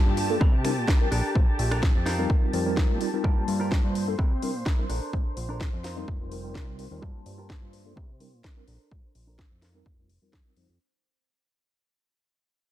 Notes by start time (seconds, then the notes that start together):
Already playing: G3 A#3 D4 F4 G4 A5
0.06 G2
0.17 muted clean electric guitar stroke, open hi-hat
0.29 G3 A#3 D4 F4 A4
0.41 C3 D4 E4 A#4, kick
0.64 G3 C4 D4 E4 A#4, finger snap, muted clean electric guitar stroke, open hi-hat
0.77 A#2
0.88 D4 E4 A#4, kick, snare
1.00 G3 C4 D4 E4 A#4
1.11 A#1 D4 A4 A#4, open hi-hat
1.35 A#1 A#3 C4 D4 F4 C5, kick
1.59 A#1, open hi-hat
1.71 D4 A4 A#4, finger snap
1.83 finger snap, kick, snare
1.95 F2
2.06 D#4 F4 A#4, snare, open hi-hat
2.18 G3 C4 D#4 F4 A#4
2.30 kick
2.53 F2 G3 C4 D#4 F4 A#4, muted clean electric guitar stroke, open hi-hat
2.66 G3 C4 D#4 F4 A#4
2.77 D#4 F4 A#4, kick, snare
2.90 A#2
3.01 G3 C4 D#4 F4 A#4, muted clean electric guitar stroke, open hi-hat
3.13 G3 C4 D#4 F4 A#4
3.24 G2 G3 A#3 D4 F4 G4 A#4 C5 A5 C6, kick
3.48 G2, open hi-hat
3.60 F4 G4 A#4
3.72 kick, snare
3.84 G2
3.95 muted clean electric guitar stroke, open hi-hat
4.07 G3 A#3 D4 F4 A4
4.19 C3 D4 E4 A#4, kick
4.42 G3 C4 D4 E4 A#4, muted clean electric guitar stroke, open hi-hat
4.55 A#2
4.66 D4 E4 A#4, kick, snare
4.78 G3 C4 D4 E4 A#4
4.89 A#1 D4 A4 A#4, open hi-hat
5.13 A#1 A#3 C4 D4 F4 C5, kick
5.37 A#1, open hi-hat
5.49 D4 A4 A#4
5.61 kick, snare
5.73 F2
5.84 D#4 F4 A#4, snare, open hi-hat
5.96 G3 C4 D#4 F4 A#4
6.08 F1, kick
6.31 G3 C4 D#4 F4 A#4, muted clean electric guitar stroke, open hi-hat
6.44 G3 C4 D#4 F4 A#4
6.55 C2 D#4 F4 A#4, kick, snare
6.79 G3 C4 D#4 F4 A#4, muted clean electric guitar stroke, open hi-hat
6.91 D#2 G3 C4 D#4 F4 A#4
7.02 G2 G3 A#3 D4 F4 G4 A#4 A5, kick
7.26 G2, open hi-hat
7.38 F4 G4 A#4
7.50 kick, snare
7.62 G2
7.73 muted clean electric guitar stroke, open hi-hat
7.85 G3 A#3 D4 F4 A4
7.97 C3 D4 E4 A#4, kick
8.20 G3 C4 D4 E4 A#4, muted clean electric guitar stroke, open hi-hat
8.33 A#2
8.44 D4 E4 A#4, kick, snare
8.56 G3 C4 D4 E4 A#4
8.68 A#1 D4 A4 A#4, open hi-hat
8.91 A#1 A#3 C4 D4 F4 C5, kick
9.15 A#1, open hi-hat
9.27 D4 A4 A#4
9.39 kick, snare
9.51 F2
9.62 D#4 F4 A#4, snare, open hi-hat
9.75 G3 C4 D#4 F4 A#4
9.86 F1, kick
10.09 muted clean electric guitar stroke, open hi-hat
10.22 F2 G3 C4 D#4 F4 A#4
10.33 F2 D#4 F4 A#4, kick, snare
10.45 G3 C4 D#4 F4 A#4
10.56 F2 G3 C4 D#4 F4, muted clean electric guitar stroke, open hi-hat
10.69 F2